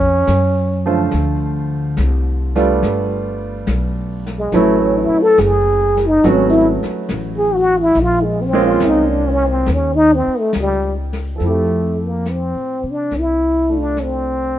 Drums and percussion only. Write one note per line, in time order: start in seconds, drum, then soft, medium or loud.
0.01 kick medium
0.27 snare medium
0.27 hi-hat pedal medium
1.11 brush sweep soft
1.11 snare soft
1.97 snare medium
1.97 hi-hat pedal medium
2.56 snare soft
2.83 brush sweep medium
2.83 snare soft
3.67 snare medium
3.67 hi-hat pedal medium
4.26 snare soft
4.52 brush sweep soft
4.52 snare soft
5.38 snare medium
5.38 hi-hat pedal medium
5.97 snare soft
6.24 brush sweep medium
6.24 snare soft
6.83 snare soft
7.09 snare medium
7.09 hi-hat pedal medium
7.95 brush sweep soft
7.95 snare soft
8.80 snare medium
8.80 hi-hat pedal medium
9.66 brush sweep soft
9.66 snare soft
10.53 snare medium
10.53 hi-hat pedal medium
11.13 snare soft
11.40 brush sweep soft
11.40 snare soft
12.26 snare soft
12.26 hi-hat pedal soft
13.11 brush sweep soft
13.11 snare soft
13.97 snare soft
13.97 hi-hat pedal soft